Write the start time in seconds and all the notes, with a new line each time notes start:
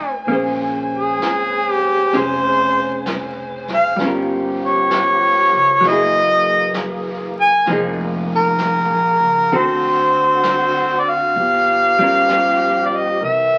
Already playing: A3 D#4 F#4 G#5
0.25 A#1 C#3 A#3 C5
0.29 C#4 G#4 C5, brush sweep
0.95 G#4
1.19 G#1, brush sweep, snare, hi-hat pedal
1.71 G4
2.13 F1 C#4 G#4 C5, brush sweep, snare
2.19 C5
3.06 brush sweep, snare, hi-hat pedal
3.68 snare
3.74 F5
3.96 G1 F3 G3 A#3 G4, brush sweep, snare
4.01 C#4 F4
4.07 A#4
4.65 C#5
4.90 brush sweep, snare, hi-hat pedal
5.53 C#2
5.81 F#1 E3 F#3 G#4, brush sweep, snare
5.85 A#3 E4 D#5
5.92 G#4
6.74 brush sweep, snare, hi-hat pedal
7.41 G#5
7.66 F1 D#3 F3 G#3 A#3, brush sweep, snare
7.71 D#4 G#4
8.36 A#4
8.58 brush sweep, snare, hi-hat pedal
8.89 A#1
9.21 C#2
9.51 D2 D3 C4 F#4 A4, brush sweep
9.57 C5
10.43 brush sweep, snare, hi-hat pedal
11.00 D5
11.10 F5
11.36 G1 F3 A#3 G4, brush sweep
11.99 G3 C#4 F4
12.03 A#4
12.29 brush sweep, snare, hi-hat pedal
12.86 D5
12.96 D#5
13.20 C2 E3 C4 A#4, brush sweep
13.25 E5